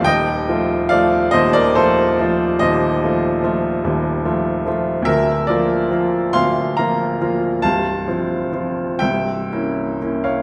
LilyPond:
<<
  \new Staff \with { instrumentName = "Grand piano" } { \time 12/8 \key bes \lydian \tempo 4. = 47 <ees'' g''>4 <d'' f''>8 <c'' ees''>16 <bes' d''>16 <a' c''>4 <c'' ees''>2~ <c'' ees''>8 r8 | <bes' e''>8 <bes' d''>4 <f'' c'''>8 <f'' bes''>4 <f'' a''>4. <e'' g''>4~ <e'' g''>16 <des'' f''>16 | }
  \new Staff \with { instrumentName = "Grand piano" } { \time 12/8 \key bes \lydian <ees,, ees,>8 <f a f'>8 <f a f'>8 <ees,, ees,>8 <f a f'>8 <f a f'>8 <ees,, ees,>8 <f a f'>8 <f a f'>8 <ees,, ees,>8 <f a f'>8 <f a f'>8 | <d,, d,>8 <f bes f'>8 <f bes f'>8 <d,, d,>8 <f bes f'>8 <f bes f'>8 <c,, c,>8 <f c' f'>8 <f c' f'>8 <c,, c,>8 <bes des' e'>8 <bes des' e'>8 | }
>>